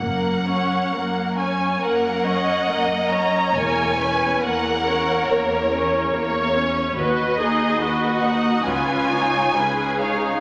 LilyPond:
<<
  \new Staff \with { instrumentName = "Violin section" } { \time 4/4 \key fis \major \tempo 4 = 69 fis''4. gis''8 fis''4. ais''8 | gis''4 fis''4 cis''4 r4 | dis''4. fis''8 gis''4. eis''8 | }
  \new Staff \with { instrumentName = "Violin section" } { \time 4/4 \key fis \major r2 ais'8 dis''4. | cis''8 b'8 ais'2 cis''4 | b'8 gis'8 fis'4 eis'4 gis'4 | }
  \new Staff \with { instrumentName = "Viola section" } { \time 4/4 \key fis \major <ais ais'>8 <cis' cis''>8 <ais ais'>8 <cis' cis''>8 <ais ais'>8 <cis' cis''>8 <ais ais'>8 <cis' cis''>8 | <ais ais'>8 <cis' cis''>8 <ais ais'>8 <cis' cis''>8 <ais ais'>8 <cis' cis''>8 <ais ais'>8 <cis' cis''>8 | <fis' b'>8 <dis' dis''>8 <fis' b'>8 <dis' dis''>8 <cis' b'>8 <dis' cis''>8 <cis' b'>8 <dis' cis''>8 | }
  \new Staff \with { instrumentName = "Cello section" } { \clef bass \time 4/4 \key fis \major fis,4 fis,4 fis,4 fis,4 | e,4 e,4 e,4 e,4 | dis,4 dis,4 cis,4 cis,4 | }
  \new Staff \with { instrumentName = "Double bass section" } { \clef bass \time 4/4 \key fis \major fis,,4 r2. | e,,4 r2. | dis,4 r4 cis,4 r4 | }
>>